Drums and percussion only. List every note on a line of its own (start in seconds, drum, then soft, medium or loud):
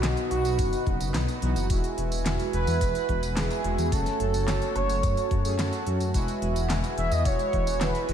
0.03 snare loud
0.03 clap loud
0.03 closed hi-hat loud
0.03 tambourine soft
0.17 closed hi-hat soft
0.17 tambourine soft
0.31 closed hi-hat medium
0.45 closed hi-hat soft
0.45 tambourine medium
0.59 kick loud
0.59 closed hi-hat loud
0.59 tambourine soft
0.73 closed hi-hat soft
0.73 tambourine soft
0.87 kick loud
0.87 closed hi-hat soft
1.00 closed hi-hat soft
1.00 tambourine medium
1.14 snare loud
1.14 clap loud
1.14 closed hi-hat loud
1.14 tambourine soft
1.28 closed hi-hat soft
1.28 tambourine soft
1.42 closed hi-hat medium
1.56 closed hi-hat soft
1.56 tambourine medium
1.70 kick loud
1.70 closed hi-hat medium
1.70 tambourine soft
1.84 closed hi-hat soft
1.84 tambourine soft
1.98 closed hi-hat medium
2.12 closed hi-hat soft
2.12 tambourine medium
2.26 snare loud
2.26 clap loud
2.26 closed hi-hat loud
2.26 tambourine soft
2.40 closed hi-hat soft
2.40 tambourine soft
2.53 closed hi-hat medium
2.67 closed hi-hat soft
2.67 tambourine medium
2.81 kick loud
2.81 closed hi-hat loud
2.81 tambourine soft
2.95 closed hi-hat soft
2.95 tambourine soft
3.09 kick medium
3.09 closed hi-hat soft
3.23 closed hi-hat soft
3.23 tambourine medium
3.37 snare loud
3.37 clap medium
3.37 closed hi-hat loud
3.37 tambourine soft
3.51 closed hi-hat soft
3.51 tambourine soft
3.64 closed hi-hat medium
3.78 closed hi-hat soft
3.78 tambourine medium
3.92 kick loud
3.92 closed hi-hat medium
3.92 tambourine soft
4.06 snare soft
4.06 closed hi-hat soft
4.06 tambourine soft
4.20 closed hi-hat medium
4.34 closed hi-hat soft
4.34 tambourine medium
4.48 snare loud
4.48 clap medium
4.48 closed hi-hat medium
4.48 tambourine soft
4.62 closed hi-hat soft
4.62 tambourine soft
4.76 closed hi-hat medium
4.89 closed hi-hat soft
4.89 tambourine medium
5.03 kick loud
5.03 closed hi-hat loud
5.03 tambourine soft
5.17 closed hi-hat soft
5.17 tambourine soft
5.31 kick loud
5.31 closed hi-hat soft
5.45 closed hi-hat soft
5.45 tambourine medium
5.59 snare loud
5.59 clap medium
5.59 closed hi-hat medium
5.59 tambourine soft
5.73 closed hi-hat soft
5.73 tambourine soft
5.87 closed hi-hat medium
6.00 closed hi-hat soft
6.00 tambourine medium
6.14 kick loud
6.14 closed hi-hat medium
6.14 tambourine medium
6.28 closed hi-hat soft
6.28 tambourine soft
6.42 closed hi-hat medium
6.56 closed hi-hat soft
6.56 tambourine medium
6.70 snare loud
6.70 clap medium
6.70 closed hi-hat medium
6.70 tambourine soft
6.84 closed hi-hat soft
6.84 tambourine soft
6.98 closed hi-hat medium
7.12 closed hi-hat soft
7.12 tambourine medium
7.25 kick loud
7.25 closed hi-hat medium
7.25 tambourine medium
7.39 closed hi-hat soft
7.39 tambourine soft
7.53 kick medium
7.53 closed hi-hat soft
7.67 closed hi-hat soft
7.67 tambourine medium
7.81 snare loud
7.81 clap medium
7.81 closed hi-hat medium
7.81 tambourine medium
7.95 closed hi-hat soft
7.95 tambourine soft
8.09 closed hi-hat medium